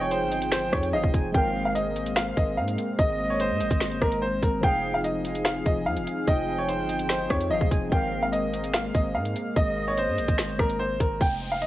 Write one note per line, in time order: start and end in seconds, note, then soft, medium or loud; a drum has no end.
0.00 0.23 F1 loud
0.00 0.88 F3 medium
0.00 1.31 F3 medium
0.00 4.59 C4 medium
0.00 0.89 D#4 medium
0.00 1.31 D#4 medium
0.00 0.91 G#4 medium
0.00 1.31 G#4 medium
0.00 0.11 C#5 medium
0.00 0.89 G5 loud
0.11 0.50 C5 medium
0.11 closed hi-hat medium
0.21 0.70 G1 medium
0.32 closed hi-hat medium
0.42 closed hi-hat medium
0.52 0.71 C5 medium
0.52 finger snap loud
0.52 snare loud
0.52 closed hi-hat medium
0.72 0.95 F2 loud
0.72 0.92 C#5 medium
0.72 kick loud
0.72 cross-stick loud
0.83 closed hi-hat medium
0.92 1.03 G1 loud
0.92 1.34 F3 soft
0.92 1.34 D#4 soft
0.92 1.35 G#4 medium
0.92 1.13 D#5 loud
0.92 1.13 F5 medium
1.04 1.13 F1 loud
1.04 kick loud
1.14 1.34 F1 loud
1.14 1.33 G#5 medium
1.14 kick medium
1.14 closed hi-hat medium
1.32 2.33 G#1 loud
1.32 4.58 G#3 medium
1.32 4.60 G#3 medium
1.32 4.60 A#3 medium
1.32 4.59 C4 medium
1.32 1.73 F5 loud
1.32 1.64 G5 medium
1.32 kick loud
1.32 closed hi-hat medium
1.37 4.60 A#4 medium
1.65 1.75 F5 medium
1.75 2.14 D#5 medium
1.75 closed hi-hat medium
1.96 closed hi-hat medium
2.06 closed hi-hat medium
2.16 2.36 F5 medium
2.16 finger snap loud
2.16 snare loud
2.37 2.59 G#1 loud
2.37 2.56 D#5 medium
2.37 kick loud
2.37 closed hi-hat medium
2.57 2.77 G#2 loud
2.57 2.96 F5 medium
2.68 closed hi-hat medium
2.78 closed hi-hat medium
2.99 3.52 G#1 loud
2.99 4.18 D#5 loud
2.99 3.28 D#5 loud
2.99 kick loud
2.99 closed hi-hat medium
3.30 3.40 C#5 medium
3.40 3.98 C5 medium
3.40 closed hi-hat medium
3.50 3.62 G#2 medium
3.60 3.70 G#1 loud
3.60 closed hi-hat medium
3.71 3.93 G#1 loud
3.71 kick medium
3.71 closed hi-hat medium
3.80 finger snap loud
3.80 snare loud
3.80 closed hi-hat medium
3.91 4.01 G1 loud
3.91 closed hi-hat medium
4.02 4.41 G#1 loud
4.02 4.21 A#4 medium
4.02 kick medium
4.02 cross-stick loud
4.12 closed hi-hat medium
4.22 4.41 C5 medium
4.43 4.62 G#1 loud
4.43 4.62 A#4 medium
4.43 kick medium
4.43 closed hi-hat medium
4.61 5.62 F1 loud
4.61 7.46 F3 medium
4.61 7.89 F3 medium
4.61 11.17 C4 medium
4.61 7.47 D#4 medium
4.61 7.89 D#4 medium
4.61 7.89 G#4 medium
4.61 5.02 F5 loud
4.61 4.93 G5 loud
4.61 kick loud
4.61 closed hi-hat medium
4.66 7.48 G#4 medium
4.94 5.04 F5 medium
5.04 5.43 D#5 medium
5.04 closed hi-hat medium
5.25 closed hi-hat medium
5.35 closed hi-hat medium
5.45 5.64 F5 medium
5.45 finger snap medium
5.45 snare loud
5.66 5.88 F1 loud
5.66 5.85 D#5 medium
5.66 kick loud
5.66 closed hi-hat medium
5.86 5.98 F2 loud
5.86 6.25 F5 medium
5.97 6.06 F1 loud
5.97 closed hi-hat medium
6.07 closed hi-hat medium
6.27 6.80 F1 loud
6.27 6.56 D#5 loud
6.27 7.47 G5 loud
6.27 kick loud
6.27 closed hi-hat medium
6.58 6.68 C#5 medium
6.69 7.07 C5 medium
6.69 closed hi-hat medium
6.79 7.28 G1 loud
6.89 closed hi-hat medium
6.99 closed hi-hat medium
7.09 7.29 C5 medium
7.09 finger snap loud
7.09 snare loud
7.09 closed hi-hat medium
7.30 7.52 F2 loud
7.30 7.49 C#5 medium
7.30 kick loud
7.30 cross-stick loud
7.41 closed hi-hat medium
7.49 7.61 G1 loud
7.49 7.91 F3 soft
7.49 7.92 D#4 soft
7.49 7.92 G#4 medium
7.49 7.70 D#5 medium
7.49 7.70 F5 medium
7.61 7.71 F1 loud
7.61 kick loud
7.71 7.91 F1 loud
7.71 7.91 G#5 medium
7.71 kick medium
7.71 closed hi-hat medium
7.90 8.91 G#1 loud
7.90 11.16 G#3 medium
7.90 11.17 G#3 medium
7.90 11.17 A#3 medium
7.90 11.17 C4 medium
7.90 8.31 F5 loud
7.90 8.21 G5 medium
7.90 kick loud
7.90 closed hi-hat medium
7.94 11.18 A#4 medium
8.23 8.32 F5 medium
8.32 8.71 D#5 medium
8.32 closed hi-hat medium
8.54 closed hi-hat medium
8.64 closed hi-hat medium
8.74 8.93 F5 medium
8.74 finger snap loud
8.74 snare loud
8.95 9.17 G#1 loud
8.95 9.14 D#5 medium
8.95 kick loud
8.95 closed hi-hat medium
9.15 9.35 G#2 loud
9.15 9.54 F5 medium
9.25 closed hi-hat medium
9.36 closed hi-hat medium
9.56 10.09 G#1 loud
9.56 9.85 D#5 loud
9.56 10.76 D#5 loud
9.56 kick loud
9.56 closed hi-hat medium
9.88 9.97 C#5 medium
9.97 10.56 C5 medium
9.97 closed hi-hat medium
10.08 10.19 G#2 loud
10.18 10.28 G#1 loud
10.18 closed hi-hat medium
10.28 10.50 G#1 loud
10.28 kick loud
10.28 closed hi-hat medium
10.38 finger snap loud
10.38 snare loud
10.38 closed hi-hat medium
10.49 10.59 G1 loud
10.49 closed hi-hat medium
10.59 10.99 G#1 loud
10.59 10.78 A#4 medium
10.59 kick loud
10.59 cross-stick loud
10.69 closed hi-hat medium
10.79 10.99 C5 medium
11.00 11.20 G#1 loud
11.00 11.20 A#4 medium
11.00 kick medium
11.00 closed hi-hat medium
11.21 11.67 F1 loud
11.21 11.50 G5 loud
11.21 kick loud
11.21 closed hi-hat medium
11.21 downlifter medium
11.52 11.61 F5 medium
11.62 11.67 D#5 medium
11.62 closed hi-hat medium